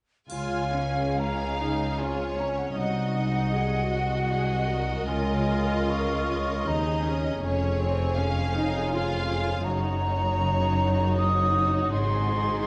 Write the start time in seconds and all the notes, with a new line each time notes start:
0.30 C#2 C#3 F4 G#4 F5 G#5, triangle
0.75 C#4
1.19 G#3 C#4 F5 A#5
1.59 C#4 D#4
1.98 C4 F4 C#5 G#5
2.38 C#4 A#5
2.49 G#5
2.58 F#5
2.67 G#5
2.77 C2 C3 D#4 F#4 D#5 F#5
3.17 G#3 D#4
3.54 F#3 F#4 G#4
3.92 G#3 F#4
4.30 F#3 G#4 D#5
4.69 G#3 A#4
5.06 C#2 C#3 F4 G#5
5.48 C#4
5.90 G#3 C#6
6.31 C#4
6.67 D#2 C4 D#4 G#4 A#5
7.05 C#4
7.41 F1 F2 C#4 G#4 C#5 G#5
7.80 C4 C#4
8.17 F3 C#4 F5
8.55 C#4 D#4
8.93 C4 F4 G#4 F5
9.29 C#4
9.64 F#1 F#2 D#4 F#4 C#5 A#5
10.02 C#4
10.39 C#3
10.79 C#4
11.17 C4 D#6
11.57 C#4
11.92 G#1 G#2 G#4 C6
12.28 G#3
12.63 D#3